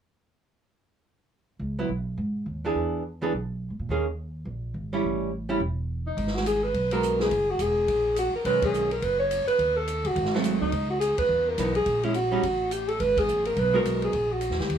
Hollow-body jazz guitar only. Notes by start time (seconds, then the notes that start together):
1.79 F#3 B3 E4
2.65 E3 B3 D4 G#4
3.22 E3 B3 D4 G#4
3.90 D#3 A#3 C#4 G#4
4.93 G3 C#4 E4
5.49 G3 C#4 E4
6.92 G#3 B3 F#4 A#4
8.46 D#3 G#3 C#4
10.35 F#3 A3 C4
11.58 E3 B3 D#4
12.04 G#3 C#4 E4
12.32 G3 C#4 D#4
13.73 G#3 B3 F#4 A#4